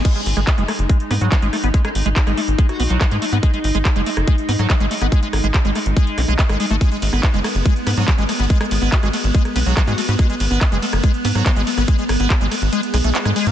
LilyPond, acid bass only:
\new Staff \with { instrumentName = "Acid bass" } { \clef bass \time 4/4 \key gis \minor \tempo 4 = 142 gis16 gis16 r16 gis16 r16 gis16 a16 r16 gis16 r16 b16 fis16 fis16 gis16 a16 b16 | gis16 gis16 r16 gis16 r16 gis16 a16 r16 gis16 r16 b16 fis16 fis16 gis16 a16 b16 | gis16 gis16 r16 gis16 r16 gis16 a16 r16 gis16 r16 b16 fis16 fis16 gis16 a16 b16 | gis16 gis16 r16 gis16 r16 gis16 a16 r16 gis8 dis'16 gis16 gis16 gis16 gis16 a16 |
gis16 gis16 r16 b16 r16 gis16 a16 r16 gis16 r16 b16 fis16 fis16 gis16 a16 b16 | gis16 gis16 r16 b16 r16 gis16 a16 r16 gis16 r16 b16 fis16 fis16 gis16 a16 b16 | gis16 gis16 r16 b16 r16 gis16 a16 r16 gis16 r16 b16 fis16 fis16 gis16 a16 b16 | gis16 gis16 r16 b16 r16 gis16 a16 r16 gis16 r16 gis16 a16 b16 gis16 gis16 b16 | }